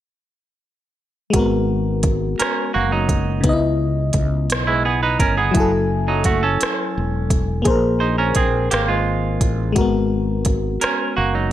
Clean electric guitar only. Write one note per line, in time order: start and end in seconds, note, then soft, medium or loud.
2.39 2.73 C#4 medium
2.39 2.73 A#4 medium
2.74 2.91 A#3 medium
2.74 2.91 F#4 medium
2.92 3.42 F#3 soft
2.92 3.42 D#4 medium
4.67 4.84 G#3 medium
4.67 4.84 E4 medium
4.85 5.02 B3 medium
4.85 5.02 G#4 medium
5.03 5.19 D#4 medium
5.03 5.19 B4 medium
5.20 5.37 C#4 medium
5.20 5.37 A#4 medium
5.38 5.71 B3 soft
5.38 5.71 G#4 medium
6.08 6.25 F#3 medium
6.08 6.25 D#4 medium
6.25 6.42 A3 medium
6.25 6.42 F#4 medium
6.43 7.44 C#4 medium
6.43 7.44 A4 medium
8.00 8.17 D#4 medium
8.00 8.17 C5 medium
8.18 8.35 C#4 medium
8.18 8.35 A#4 medium
8.36 8.70 C4 medium
8.36 8.69 G#4 medium
8.71 8.88 A#3 medium
8.71 8.88 G4 medium
8.88 9.73 G#3 medium
8.88 9.72 F4 medium
10.81 11.15 C#4 medium
10.81 11.15 A#4 medium
11.17 11.34 A#3 medium
11.17 11.33 F#4 medium
11.34 11.52 F#3 medium
11.34 11.52 D#4 medium